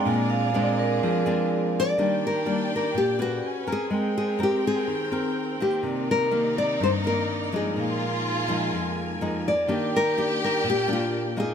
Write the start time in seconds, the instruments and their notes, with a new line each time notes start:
Already playing: nylon-string guitar G#3 C4 D4, string section A#4 D5
0.04 nylon-string guitar A#2, string section C4 G#4, vibraphone G#5
0.30 vibraphone F5
0.54 nylon-string guitar G#3 C4 D4, vibraphone D5
0.79 vibraphone A#4
1.03 nylon-string guitar F3, vibraphone G#4
1.26 nylon-string guitar G#3 C4 D4
1.80 nylon-string guitar D5
1.97 nylon-string guitar D#3 G3 A#3 D4, violin section D4, vibraphone A#4 D5, string section D5 G5
2.01 vibraphone G5
2.27 nylon-string guitar A#4
2.46 nylon-string guitar G3 A#3 D4
2.76 nylon-string guitar A#4
2.94 nylon-string guitar A#2 G4
3.19 nylon-string guitar C#4 F#4 G#4 B4
3.42 violin section C#4, vibraphone B4 G#5, string section B4 G#5
3.67 nylon-string guitar C4 A#4
3.72 nylon-string guitar G#4
3.87 nylon-string guitar G#3, vibraphone C4 A#4
3.91 violin section C4, string section C4 A#4 G5, vibraphone G5
4.18 nylon-string guitar G#4
4.39 nylon-string guitar C4 A#4
4.43 nylon-string guitar G4
4.67 nylon-string guitar G#4
4.88 nylon-string guitar D#3
5.08 vibraphone C4 A#4 G5, nylon-string guitar C4
5.12 nylon-string guitar A#4
5.60 nylon-string guitar D#3 A#3 G4
5.80 nylon-string guitar C3, vibraphone C4 A#4, violin section D#4
5.85 string section A#3 A#4 D5, vibraphone D5
6.11 nylon-string guitar A#4
6.31 nylon-string guitar D#3 A#3
6.58 nylon-string guitar D5
6.80 nylon-string guitar G2 C5
7.04 nylon-string guitar D#3 A#3 A#4
7.52 nylon-string guitar F3 G#3 D#4 G#4
7.74 nylon-string guitar A#2, vibraphone D#4 G#4 A#4, violin section F4, string section G#5
7.79 vibraphone F5
8.48 nylon-string guitar F3 G#3 D#4
8.73 nylon-string guitar F2
9.21 nylon-string guitar F3 G#3 D#4
9.48 nylon-string guitar D5
9.67 nylon-string guitar D#3 A#3 D4 G4, violin section G4, vibraphone A#4 D5, string section D5 G5
9.72 vibraphone G5
9.96 nylon-string guitar A#4
10.17 nylon-string guitar A#3 D4 G4
10.44 nylon-string guitar A#4
10.64 nylon-string guitar A#2
10.70 nylon-string guitar G4
10.88 nylon-string guitar A#3 D4 G4
10.93 nylon-string guitar F4
11.37 nylon-string guitar A#3 D#4 F4 G#4